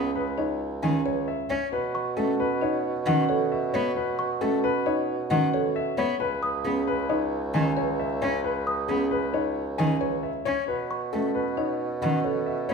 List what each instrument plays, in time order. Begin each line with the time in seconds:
Already playing: bassoon C#2, marimba C#4, grand piano G#4
0.15 grand piano B4
0.38 marimba D#4, grand piano C#5, celesta D#5
0.83 cello D#3, marimba C#4, grand piano G#5
1.06 marimba B4, grand piano C#5
1.28 grand piano E5
1.50 cello C#4, grand piano C#5
1.72 bassoon B2, grand piano B4
1.95 celesta C#6
2.17 cello A3, marimba C#4, grand piano A4
2.40 grand piano B4
2.61 marimba D#4, grand piano C#5, celesta D#5
3.06 cello D#3, marimba C#4, grand piano F#5
3.29 marimba A4, grand piano C#5
3.52 grand piano E5
3.74 cello B3, grand piano C#5
3.97 grand piano B4
4.19 celesta C#6
4.41 cello A3, marimba C#4, grand piano A4
4.64 grand piano B4
4.86 marimba D#4, grand piano C#5, celesta D#5
5.30 cello D#3, marimba C#4, grand piano F#5
5.54 marimba A4, grand piano C#5
5.76 grand piano E5
5.98 cello B3, grand piano C#5
6.20 bassoon C#2, grand piano B4
6.43 celesta D#6
6.65 cello B3, marimba C#4, grand piano G#4
6.87 grand piano B4
7.09 marimba D#4, grand piano C#5, celesta D#5
7.54 cello D#3, marimba C#4, grand piano G#5
7.77 marimba B4, grand piano C#5
8.00 grand piano E5
8.22 cello C#4, grand piano C#5
8.44 grand piano B4
8.67 celesta D#6
8.89 cello B3, marimba C#4, grand piano G#4
9.11 grand piano B4
9.34 marimba D#4, grand piano C#5, celesta D#5
9.78 cello D#3, marimba C#4, grand piano G#5
10.01 marimba B4, grand piano C#5
10.23 grand piano E5
10.45 cello C#4, grand piano C#5
10.68 bassoon B2, grand piano B4
10.91 celesta C#6
11.13 cello A3, marimba C#4, grand piano A4
11.35 grand piano B4
11.57 marimba D#4, grand piano C#5, celesta D#5
12.02 cello D#3, marimba C#4, grand piano F#5
12.24 marimba A4, grand piano C#5
12.46 grand piano E5
12.69 cello B3, grand piano C#5